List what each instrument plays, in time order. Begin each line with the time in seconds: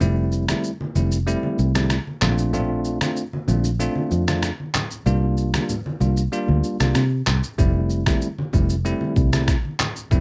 0.01 fingered electric bass F1, tine electric piano G3 A3 C4 E4, low conga, shaker
0.32 shaker
0.48 tine electric piano G3 A3 C4 E4, finger snap, cross-stick, high conga, shaker
0.64 shaker
0.81 high conga
0.95 fingered electric bass F1, tine electric piano G3 A3 C4 E4, high conga, shaker
1.12 shaker
1.27 tine electric piano G3 A3 C4 E4, shaker
1.43 high conga
1.58 fingered electric bass C2, shaker
1.75 tine electric piano G3 A3 C4 E4, finger snap, cross-stick, high conga, shaker
1.90 finger snap, cross-stick, shaker
2.07 high conga
2.22 fingered electric bass A#1, tine electric piano A3 C4 D4 F4, finger snap, cross-stick, clap, high conga, low conga, shaker
2.38 shaker
2.53 tine electric piano A3 C4 D4 F4, low conga, shaker
2.85 shaker
3.01 tine electric piano A3 C4 D4 F4, finger snap, cross-stick, high conga, shaker
3.16 shaker
3.33 high conga
3.48 fingered electric bass A#1, tine electric piano A3 C4 D4 F4, high conga, shaker
3.64 shaker
3.80 tine electric piano A3 C4 D4 F4, shaker
3.96 high conga
4.11 fingered electric bass F2, shaker
4.28 tine electric piano A3 C4 D4 F4, finger snap, cross-stick, high conga, shaker
4.42 finger snap, cross-stick, shaker
4.60 high conga
4.74 finger snap, cross-stick, clap, high conga, low conga, shaker
4.91 shaker
5.06 fingered electric bass C2, tine electric piano G3 A#3 D4 F4, low conga, shaker
5.37 shaker
5.54 tine electric piano G3 A#3 D4 F4, finger snap, cross-stick, high conga, shaker
5.69 low conga, shaker
5.86 high conga
6.00 fingered electric bass C2, tine electric piano G3 A#3 D4 F4, high conga, shaker
6.17 shaker
6.32 tine electric piano G3 A#3 D4 F4, shaker
6.48 fingered electric bass D2, high conga
6.64 shaker
6.80 fingered electric bass C2, tine electric piano G3 A#3 D4 F4, finger snap, cross-stick, high conga, shaker
6.95 fingered electric bass C3, finger snap, cross-stick, shaker
7.27 fingered electric bass C2, finger snap, cross-stick, clap, low conga, shaker
7.43 shaker
7.58 fingered electric bass F1, tine electric piano G3 A3 C4 E4, kick, low conga, shaker
7.90 shaker
8.06 tine electric piano G3 A3 C4 E4, finger snap, kick, cross-stick, high conga, shaker
8.22 shaker
8.39 high conga
8.53 fingered electric bass F1, tine electric piano G3 A3 C4 E4, kick, high conga, shaker
8.69 shaker
8.85 tine electric piano G3 A3 C4 E4, shaker
9.01 high conga
9.16 fingered electric bass C2, kick, shaker
9.33 tine electric piano G3 A3 C4 E4, finger snap, cross-stick, high conga, shaker
9.48 finger snap, kick, cross-stick, shaker
9.65 high conga
9.80 finger snap, cross-stick, clap, high conga, low conga, shaker
9.96 shaker
10.11 fingered electric bass F1, tine electric piano G3 A3 C4 E4, kick, low conga, shaker